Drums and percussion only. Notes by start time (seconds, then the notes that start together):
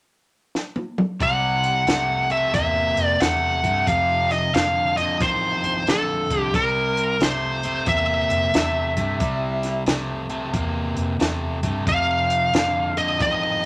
0.55 snare
0.76 high tom
0.98 mid tom
1.20 kick, closed hi-hat
1.64 closed hi-hat
1.87 snare, closed hi-hat
2.30 closed hi-hat
2.54 kick, snare, closed hi-hat
2.97 closed hi-hat
3.20 snare, closed hi-hat
3.64 kick, closed hi-hat
3.87 kick, closed hi-hat
4.31 snare, closed hi-hat
4.54 snare, closed hi-hat
4.97 snare, closed hi-hat
5.20 kick, snare, closed hi-hat
5.64 closed hi-hat
5.87 snare, closed hi-hat
6.30 kick, closed hi-hat
6.54 kick, snare, closed hi-hat
6.97 closed hi-hat
7.20 snare, closed hi-hat
7.63 closed hi-hat
7.86 kick, closed hi-hat
8.30 closed hi-hat
8.54 snare, closed hi-hat
8.97 kick, closed hi-hat
9.20 kick, closed hi-hat
9.63 snare, closed hi-hat
9.87 snare, closed hi-hat
10.30 closed hi-hat
10.54 kick, closed hi-hat
10.97 closed hi-hat
11.20 snare, closed hi-hat
11.63 kick, closed hi-hat
11.87 kick, closed hi-hat
12.30 closed hi-hat
12.54 snare, closed hi-hat
12.97 closed hi-hat
13.20 kick, closed hi-hat